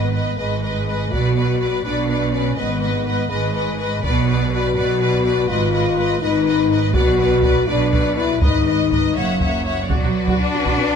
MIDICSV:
0, 0, Header, 1, 8, 480
1, 0, Start_track
1, 0, Tempo, 486224
1, 1106, Time_signature, 6, 3, 24, 8
1, 7335, Tempo, 495868
1, 10749, End_track
2, 0, Start_track
2, 0, Title_t, "Violin section"
2, 0, Program_c, 0, 48
2, 0, Note_on_c, 0, 75, 31
2, 119, Note_off_c, 0, 75, 0
2, 131, Note_on_c, 0, 75, 36
2, 359, Note_off_c, 0, 75, 0
2, 371, Note_on_c, 0, 75, 38
2, 611, Note_off_c, 0, 75, 0
2, 625, Note_on_c, 0, 75, 35
2, 854, Note_off_c, 0, 75, 0
2, 866, Note_on_c, 0, 75, 35
2, 1102, Note_off_c, 0, 75, 0
2, 1107, Note_on_c, 0, 74, 39
2, 1330, Note_off_c, 0, 74, 0
2, 1342, Note_on_c, 0, 74, 36
2, 1570, Note_off_c, 0, 74, 0
2, 1582, Note_on_c, 0, 74, 39
2, 1815, Note_off_c, 0, 74, 0
2, 1827, Note_on_c, 0, 74, 41
2, 2046, Note_off_c, 0, 74, 0
2, 2058, Note_on_c, 0, 74, 36
2, 2288, Note_off_c, 0, 74, 0
2, 2300, Note_on_c, 0, 74, 34
2, 2531, Note_on_c, 0, 75, 41
2, 2536, Note_off_c, 0, 74, 0
2, 2759, Note_off_c, 0, 75, 0
2, 2771, Note_on_c, 0, 75, 35
2, 3006, Note_off_c, 0, 75, 0
2, 3017, Note_on_c, 0, 75, 42
2, 3246, Note_off_c, 0, 75, 0
2, 3258, Note_on_c, 0, 75, 44
2, 3488, Note_off_c, 0, 75, 0
2, 3500, Note_on_c, 0, 75, 39
2, 3732, Note_off_c, 0, 75, 0
2, 3743, Note_on_c, 0, 75, 42
2, 3976, Note_off_c, 0, 75, 0
2, 3986, Note_on_c, 0, 74, 49
2, 4221, Note_off_c, 0, 74, 0
2, 4243, Note_on_c, 0, 74, 43
2, 4470, Note_off_c, 0, 74, 0
2, 4483, Note_on_c, 0, 74, 48
2, 4702, Note_off_c, 0, 74, 0
2, 4714, Note_on_c, 0, 74, 51
2, 4942, Note_off_c, 0, 74, 0
2, 4953, Note_on_c, 0, 74, 49
2, 5172, Note_off_c, 0, 74, 0
2, 5183, Note_on_c, 0, 74, 44
2, 5415, Note_off_c, 0, 74, 0
2, 5419, Note_on_c, 0, 75, 48
2, 5647, Note_off_c, 0, 75, 0
2, 5659, Note_on_c, 0, 75, 42
2, 5893, Note_off_c, 0, 75, 0
2, 5915, Note_on_c, 0, 75, 52
2, 6129, Note_off_c, 0, 75, 0
2, 6140, Note_on_c, 0, 75, 52
2, 6367, Note_off_c, 0, 75, 0
2, 6379, Note_on_c, 0, 75, 50
2, 6611, Note_off_c, 0, 75, 0
2, 6623, Note_on_c, 0, 75, 52
2, 6853, Note_off_c, 0, 75, 0
2, 6854, Note_on_c, 0, 74, 55
2, 7085, Note_off_c, 0, 74, 0
2, 7097, Note_on_c, 0, 74, 50
2, 7321, Note_off_c, 0, 74, 0
2, 7333, Note_on_c, 0, 74, 48
2, 7562, Note_off_c, 0, 74, 0
2, 7574, Note_on_c, 0, 74, 51
2, 7795, Note_off_c, 0, 74, 0
2, 7807, Note_on_c, 0, 74, 44
2, 8033, Note_off_c, 0, 74, 0
2, 8045, Note_on_c, 0, 74, 47
2, 8281, Note_off_c, 0, 74, 0
2, 8286, Note_on_c, 0, 75, 47
2, 8513, Note_off_c, 0, 75, 0
2, 8524, Note_on_c, 0, 75, 38
2, 8752, Note_off_c, 0, 75, 0
2, 8764, Note_on_c, 0, 75, 40
2, 9002, Note_off_c, 0, 75, 0
2, 9018, Note_on_c, 0, 78, 40
2, 9250, Note_off_c, 0, 78, 0
2, 9262, Note_on_c, 0, 78, 37
2, 9489, Note_off_c, 0, 78, 0
2, 9500, Note_on_c, 0, 78, 34
2, 9733, Note_on_c, 0, 66, 52
2, 9734, Note_off_c, 0, 78, 0
2, 10749, Note_off_c, 0, 66, 0
2, 10749, End_track
3, 0, Start_track
3, 0, Title_t, "Viola section"
3, 0, Program_c, 1, 48
3, 0, Note_on_c, 1, 71, 36
3, 127, Note_off_c, 1, 71, 0
3, 140, Note_on_c, 1, 71, 37
3, 373, Note_off_c, 1, 71, 0
3, 386, Note_on_c, 1, 71, 34
3, 604, Note_off_c, 1, 71, 0
3, 616, Note_on_c, 1, 71, 35
3, 856, Note_off_c, 1, 71, 0
3, 869, Note_on_c, 1, 71, 33
3, 1092, Note_off_c, 1, 71, 0
3, 1104, Note_on_c, 1, 71, 41
3, 1341, Note_off_c, 1, 71, 0
3, 1354, Note_on_c, 1, 71, 35
3, 1565, Note_off_c, 1, 71, 0
3, 1577, Note_on_c, 1, 71, 38
3, 1814, Note_off_c, 1, 71, 0
3, 1826, Note_on_c, 1, 71, 38
3, 2051, Note_off_c, 1, 71, 0
3, 2063, Note_on_c, 1, 71, 34
3, 2293, Note_off_c, 1, 71, 0
3, 2305, Note_on_c, 1, 71, 39
3, 2528, Note_off_c, 1, 71, 0
3, 2539, Note_on_c, 1, 71, 41
3, 2775, Note_off_c, 1, 71, 0
3, 2787, Note_on_c, 1, 71, 41
3, 3005, Note_off_c, 1, 71, 0
3, 3017, Note_on_c, 1, 71, 45
3, 3252, Note_off_c, 1, 71, 0
3, 3264, Note_on_c, 1, 71, 41
3, 3494, Note_off_c, 1, 71, 0
3, 3504, Note_on_c, 1, 71, 39
3, 3734, Note_off_c, 1, 71, 0
3, 3759, Note_on_c, 1, 71, 41
3, 3984, Note_off_c, 1, 71, 0
3, 4000, Note_on_c, 1, 71, 51
3, 4223, Note_off_c, 1, 71, 0
3, 4235, Note_on_c, 1, 71, 44
3, 4463, Note_off_c, 1, 71, 0
3, 4474, Note_on_c, 1, 71, 49
3, 4697, Note_off_c, 1, 71, 0
3, 4709, Note_on_c, 1, 71, 48
3, 4930, Note_off_c, 1, 71, 0
3, 4942, Note_on_c, 1, 71, 44
3, 5164, Note_off_c, 1, 71, 0
3, 5175, Note_on_c, 1, 71, 46
3, 5402, Note_off_c, 1, 71, 0
3, 5414, Note_on_c, 1, 71, 54
3, 5639, Note_off_c, 1, 71, 0
3, 5651, Note_on_c, 1, 71, 48
3, 5878, Note_off_c, 1, 71, 0
3, 5890, Note_on_c, 1, 71, 50
3, 6127, Note_off_c, 1, 71, 0
3, 6145, Note_on_c, 1, 71, 52
3, 6374, Note_off_c, 1, 71, 0
3, 6385, Note_on_c, 1, 71, 48
3, 6614, Note_off_c, 1, 71, 0
3, 6628, Note_on_c, 1, 71, 48
3, 6856, Note_off_c, 1, 71, 0
3, 6871, Note_on_c, 1, 71, 56
3, 7094, Note_off_c, 1, 71, 0
3, 7106, Note_on_c, 1, 71, 51
3, 7336, Note_off_c, 1, 71, 0
3, 7351, Note_on_c, 1, 71, 53
3, 7564, Note_off_c, 1, 71, 0
3, 7575, Note_on_c, 1, 71, 51
3, 7804, Note_off_c, 1, 71, 0
3, 7816, Note_on_c, 1, 71, 45
3, 8044, Note_off_c, 1, 71, 0
3, 8055, Note_on_c, 1, 71, 42
3, 8283, Note_off_c, 1, 71, 0
3, 8294, Note_on_c, 1, 71, 50
3, 8516, Note_off_c, 1, 71, 0
3, 8528, Note_on_c, 1, 71, 41
3, 8763, Note_off_c, 1, 71, 0
3, 8773, Note_on_c, 1, 71, 39
3, 9006, Note_off_c, 1, 71, 0
3, 9007, Note_on_c, 1, 73, 37
3, 9227, Note_off_c, 1, 73, 0
3, 9239, Note_on_c, 1, 73, 38
3, 9479, Note_off_c, 1, 73, 0
3, 9491, Note_on_c, 1, 73, 35
3, 9729, Note_off_c, 1, 73, 0
3, 9730, Note_on_c, 1, 66, 46
3, 9732, Note_off_c, 1, 66, 0
3, 9732, Note_on_c, 1, 66, 45
3, 9781, Note_off_c, 1, 66, 0
3, 9860, Note_on_c, 1, 66, 32
3, 9861, Note_off_c, 1, 66, 0
3, 9861, Note_on_c, 1, 66, 36
3, 9908, Note_off_c, 1, 66, 0
3, 10103, Note_on_c, 1, 66, 48
3, 10106, Note_off_c, 1, 66, 0
3, 10106, Note_on_c, 1, 66, 47
3, 10153, Note_off_c, 1, 66, 0
3, 10343, Note_on_c, 1, 66, 38
3, 10349, Note_off_c, 1, 66, 0
3, 10349, Note_on_c, 1, 66, 33
3, 10395, Note_off_c, 1, 66, 0
3, 10467, Note_on_c, 1, 66, 52
3, 10468, Note_off_c, 1, 66, 0
3, 10468, Note_on_c, 1, 66, 50
3, 10513, Note_off_c, 1, 66, 0
3, 10582, Note_on_c, 1, 66, 35
3, 10628, Note_off_c, 1, 66, 0
3, 10749, End_track
4, 0, Start_track
4, 0, Title_t, "Violin section"
4, 0, Program_c, 2, 48
4, 0, Note_on_c, 2, 71, 31
4, 129, Note_off_c, 2, 71, 0
4, 141, Note_on_c, 2, 71, 32
4, 374, Note_off_c, 2, 71, 0
4, 389, Note_on_c, 2, 71, 38
4, 620, Note_off_c, 2, 71, 0
4, 636, Note_on_c, 2, 71, 37
4, 866, Note_off_c, 2, 71, 0
4, 882, Note_on_c, 2, 71, 32
4, 1111, Note_off_c, 2, 71, 0
4, 1131, Note_on_c, 2, 71, 39
4, 1346, Note_off_c, 2, 71, 0
4, 1358, Note_on_c, 2, 71, 37
4, 1587, Note_off_c, 2, 71, 0
4, 1597, Note_on_c, 2, 71, 37
4, 1827, Note_off_c, 2, 71, 0
4, 1840, Note_on_c, 2, 71, 40
4, 2065, Note_off_c, 2, 71, 0
4, 2077, Note_on_c, 2, 71, 38
4, 2305, Note_off_c, 2, 71, 0
4, 2318, Note_on_c, 2, 71, 36
4, 2540, Note_off_c, 2, 71, 0
4, 2551, Note_on_c, 2, 71, 43
4, 2772, Note_off_c, 2, 71, 0
4, 2783, Note_on_c, 2, 71, 39
4, 3008, Note_off_c, 2, 71, 0
4, 3020, Note_on_c, 2, 71, 41
4, 3248, Note_off_c, 2, 71, 0
4, 3260, Note_on_c, 2, 71, 45
4, 3478, Note_off_c, 2, 71, 0
4, 3490, Note_on_c, 2, 71, 44
4, 3718, Note_off_c, 2, 71, 0
4, 3730, Note_on_c, 2, 71, 38
4, 3959, Note_off_c, 2, 71, 0
4, 3971, Note_on_c, 2, 71, 47
4, 4195, Note_off_c, 2, 71, 0
4, 4207, Note_on_c, 2, 71, 44
4, 4437, Note_off_c, 2, 71, 0
4, 4449, Note_on_c, 2, 71, 43
4, 4687, Note_off_c, 2, 71, 0
4, 4699, Note_on_c, 2, 71, 47
4, 4928, Note_off_c, 2, 71, 0
4, 4940, Note_on_c, 2, 71, 51
4, 5174, Note_off_c, 2, 71, 0
4, 5206, Note_on_c, 2, 71, 43
4, 5413, Note_off_c, 2, 71, 0
4, 5425, Note_on_c, 2, 71, 50
4, 5655, Note_off_c, 2, 71, 0
4, 5667, Note_on_c, 2, 71, 48
4, 5896, Note_off_c, 2, 71, 0
4, 5907, Note_on_c, 2, 71, 50
4, 6136, Note_off_c, 2, 71, 0
4, 6152, Note_on_c, 2, 71, 54
4, 6378, Note_off_c, 2, 71, 0
4, 6389, Note_on_c, 2, 71, 54
4, 6616, Note_off_c, 2, 71, 0
4, 6629, Note_on_c, 2, 71, 47
4, 6856, Note_off_c, 2, 71, 0
4, 6867, Note_on_c, 2, 71, 54
4, 7081, Note_off_c, 2, 71, 0
4, 7093, Note_on_c, 2, 71, 48
4, 7329, Note_off_c, 2, 71, 0
4, 7351, Note_on_c, 2, 71, 50
4, 7570, Note_off_c, 2, 71, 0
4, 7582, Note_on_c, 2, 71, 51
4, 7810, Note_off_c, 2, 71, 0
4, 7821, Note_on_c, 2, 71, 52
4, 8049, Note_off_c, 2, 71, 0
4, 8063, Note_on_c, 2, 71, 44
4, 8290, Note_off_c, 2, 71, 0
4, 8315, Note_on_c, 2, 75, 45
4, 8536, Note_off_c, 2, 75, 0
4, 8549, Note_on_c, 2, 75, 40
4, 8770, Note_off_c, 2, 75, 0
4, 8782, Note_on_c, 2, 75, 39
4, 9011, Note_off_c, 2, 75, 0
4, 9018, Note_on_c, 2, 76, 39
4, 9250, Note_off_c, 2, 76, 0
4, 9261, Note_on_c, 2, 76, 38
4, 9493, Note_off_c, 2, 76, 0
4, 9509, Note_on_c, 2, 76, 30
4, 9731, Note_on_c, 2, 71, 40
4, 9732, Note_on_c, 2, 74, 41
4, 9738, Note_off_c, 2, 76, 0
4, 10749, Note_off_c, 2, 71, 0
4, 10749, Note_off_c, 2, 74, 0
4, 10749, End_track
5, 0, Start_track
5, 0, Title_t, "French horn section"
5, 0, Program_c, 3, 60
5, 0, Note_on_c, 3, 59, 54
5, 375, Note_off_c, 3, 59, 0
5, 383, Note_on_c, 3, 56, 50
5, 1103, Note_on_c, 3, 66, 60
5, 1109, Note_off_c, 3, 56, 0
5, 1825, Note_off_c, 3, 66, 0
5, 1834, Note_on_c, 3, 62, 61
5, 2298, Note_off_c, 3, 62, 0
5, 2306, Note_on_c, 3, 61, 56
5, 2543, Note_off_c, 3, 61, 0
5, 2550, Note_on_c, 3, 59, 60
5, 3260, Note_on_c, 3, 56, 58
5, 3262, Note_off_c, 3, 59, 0
5, 3978, Note_off_c, 3, 56, 0
5, 3998, Note_on_c, 3, 59, 66
5, 4465, Note_off_c, 3, 59, 0
5, 4471, Note_on_c, 3, 66, 74
5, 5402, Note_off_c, 3, 66, 0
5, 5419, Note_on_c, 3, 65, 78
5, 6135, Note_on_c, 3, 63, 81
5, 6136, Note_off_c, 3, 65, 0
5, 6683, Note_off_c, 3, 63, 0
5, 6851, Note_on_c, 3, 66, 89
5, 7557, Note_off_c, 3, 66, 0
5, 7587, Note_on_c, 3, 62, 74
5, 8056, Note_off_c, 3, 62, 0
5, 8058, Note_on_c, 3, 64, 72
5, 8292, Note_off_c, 3, 64, 0
5, 8298, Note_on_c, 3, 63, 69
5, 8999, Note_off_c, 3, 63, 0
5, 9029, Note_on_c, 3, 58, 48
5, 9727, Note_on_c, 3, 66, 42
5, 9730, Note_on_c, 3, 74, 43
5, 9731, Note_off_c, 3, 58, 0
5, 10749, Note_off_c, 3, 66, 0
5, 10749, Note_off_c, 3, 74, 0
5, 10749, End_track
6, 0, Start_track
6, 0, Title_t, "Cello section"
6, 0, Program_c, 4, 48
6, 0, Note_on_c, 4, 44, 45
6, 290, Note_off_c, 4, 44, 0
6, 377, Note_on_c, 4, 44, 41
6, 1020, Note_off_c, 4, 44, 0
6, 1111, Note_on_c, 4, 47, 48
6, 1744, Note_off_c, 4, 47, 0
6, 1831, Note_on_c, 4, 47, 48
6, 2460, Note_off_c, 4, 47, 0
6, 2552, Note_on_c, 4, 44, 49
6, 3178, Note_off_c, 4, 44, 0
6, 3263, Note_on_c, 4, 44, 53
6, 3894, Note_off_c, 4, 44, 0
6, 3982, Note_on_c, 4, 47, 59
6, 4621, Note_off_c, 4, 47, 0
6, 4710, Note_on_c, 4, 47, 57
6, 5336, Note_off_c, 4, 47, 0
6, 5425, Note_on_c, 4, 44, 64
6, 6054, Note_off_c, 4, 44, 0
6, 6146, Note_on_c, 4, 44, 63
6, 6773, Note_off_c, 4, 44, 0
6, 6856, Note_on_c, 4, 47, 67
6, 7489, Note_off_c, 4, 47, 0
6, 7572, Note_on_c, 4, 47, 58
6, 8203, Note_off_c, 4, 47, 0
6, 8290, Note_on_c, 4, 44, 55
6, 8924, Note_off_c, 4, 44, 0
6, 9011, Note_on_c, 4, 42, 46
6, 9650, Note_off_c, 4, 42, 0
6, 9736, Note_on_c, 4, 54, 58
6, 10187, Note_off_c, 4, 54, 0
6, 10221, Note_on_c, 4, 62, 68
6, 10749, Note_off_c, 4, 62, 0
6, 10749, End_track
7, 0, Start_track
7, 0, Title_t, "Double bass section"
7, 0, Program_c, 5, 48
7, 0, Note_on_c, 5, 32, 46
7, 288, Note_off_c, 5, 32, 0
7, 375, Note_on_c, 5, 32, 40
7, 1019, Note_off_c, 5, 32, 0
7, 1107, Note_on_c, 5, 35, 48
7, 1742, Note_off_c, 5, 35, 0
7, 1827, Note_on_c, 5, 35, 42
7, 2458, Note_off_c, 5, 35, 0
7, 2542, Note_on_c, 5, 32, 52
7, 3173, Note_off_c, 5, 32, 0
7, 3260, Note_on_c, 5, 32, 52
7, 3892, Note_off_c, 5, 32, 0
7, 3976, Note_on_c, 5, 35, 55
7, 4618, Note_off_c, 5, 35, 0
7, 4715, Note_on_c, 5, 35, 58
7, 5339, Note_off_c, 5, 35, 0
7, 5428, Note_on_c, 5, 32, 66
7, 6056, Note_off_c, 5, 32, 0
7, 6135, Note_on_c, 5, 32, 59
7, 6768, Note_off_c, 5, 32, 0
7, 6848, Note_on_c, 5, 35, 71
7, 7485, Note_off_c, 5, 35, 0
7, 7577, Note_on_c, 5, 35, 56
7, 8206, Note_off_c, 5, 35, 0
7, 8295, Note_on_c, 5, 32, 56
7, 8927, Note_off_c, 5, 32, 0
7, 9014, Note_on_c, 5, 30, 45
7, 9652, Note_off_c, 5, 30, 0
7, 9739, Note_on_c, 5, 35, 51
7, 9786, Note_off_c, 5, 35, 0
7, 9853, Note_on_c, 5, 35, 35
7, 9902, Note_off_c, 5, 35, 0
7, 10093, Note_on_c, 5, 35, 47
7, 10142, Note_off_c, 5, 35, 0
7, 10332, Note_on_c, 5, 35, 38
7, 10381, Note_off_c, 5, 35, 0
7, 10449, Note_on_c, 5, 35, 47
7, 10499, Note_off_c, 5, 35, 0
7, 10569, Note_on_c, 5, 35, 33
7, 10618, Note_off_c, 5, 35, 0
7, 10749, End_track
8, 0, Start_track
8, 0, Title_t, "Taiko and cinematic ensemble drums"
8, 1113, Note_on_c, 9, 41, 47
8, 1212, Note_off_c, 9, 41, 0
8, 3985, Note_on_c, 9, 41, 58
8, 4083, Note_off_c, 9, 41, 0
8, 5068, Note_on_c, 9, 41, 33
8, 5167, Note_off_c, 9, 41, 0
8, 6850, Note_on_c, 9, 41, 83
8, 6949, Note_off_c, 9, 41, 0
8, 7336, Note_on_c, 9, 41, 67
8, 7433, Note_off_c, 9, 41, 0
8, 7814, Note_on_c, 9, 41, 66
8, 7910, Note_off_c, 9, 41, 0
8, 8287, Note_on_c, 9, 41, 75
8, 8384, Note_off_c, 9, 41, 0
8, 8768, Note_on_c, 9, 41, 59
8, 8865, Note_off_c, 9, 41, 0
8, 9248, Note_on_c, 9, 41, 58
8, 9345, Note_off_c, 9, 41, 0
8, 9729, Note_on_c, 9, 41, 76
8, 9826, Note_off_c, 9, 41, 0
8, 10094, Note_on_c, 9, 41, 65
8, 10191, Note_off_c, 9, 41, 0
8, 10457, Note_on_c, 9, 41, 70
8, 10553, Note_off_c, 9, 41, 0
8, 10749, End_track
0, 0, End_of_file